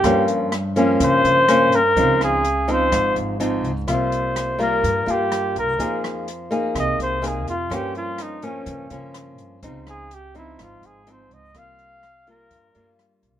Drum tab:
HH |xxxxxxxx|xxxxxxxx|xxxxxxxx|xxxxxxxx|
SD |r-r---r-|-r--r---|r-r---r-|-r--r---|
BD |o---o---|o---o---|o---o---|o---o---|

HH |xxxxxxxx|xxxxxxxx|xxxxxxxx|
SD |r-r---r-|-r--r---|r-r---r-|
BD |o---o---|o---o---|o---o---|